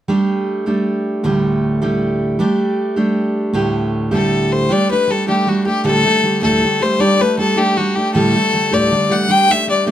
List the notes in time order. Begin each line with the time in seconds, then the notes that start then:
0.08 G3 A3 D4 G4
0.66 G3 A3 D4 G4
1.24 D2 A2 D3 G3 A3 G4
1.82 D2 A2 D3 G3 A3 G4
2.39 G3 A3 D4 G4
2.96 G3 A3 D4 G4
3.53 D2 A2 D3 G3 A3 G4
4.11 D2 A2 D3 G3 A3 G4 A4
4.52 C5
4.69 G3 A3 D4 G4 D5
4.90 A3 D4 G4 B4
5.08 G3 A3 D4 G4 A4
5.27 G3 A3 D4 G4
5.47 G3 A3 D4 F#4 G4
5.65 A3 D4 G4
5.84 D2 A2 D3 G3 A3 G4 A4
6.04 D3 G3 A3 G4
6.23 D3 G3 A3 G4
6.42 D2 A2 D3 G3 A3 G4 A4
6.62 D3 G3 A3 G4
6.81 D3 G3 A3 G4 C5
6.99 G3 A3 D4 G4 D5
7.19 A3 D4 G4 B4
7.38 G3 A3 D4 G4 A4
7.56 G3 A3 D4 G4
7.77 G3 A3 D4 F#4 G4
7.95 A3 D4 G4
8.14 D2 A2 D3 G3 A3 G4 A4
8.34 D3 G3 A3 G4
8.53 D3 G3 A3 G4
8.71 D2 A2 D3 G3 A3 G4 D5
8.91 D3 G3 A3 G4
9.10 D3 G3 A3 G4 F#5
9.28 G3 A3 D4 G4 G5
9.49 A3 D4 G4 E5
9.67 G3 A3 D4 G4 D5
9.86 G3 A3 D4 G4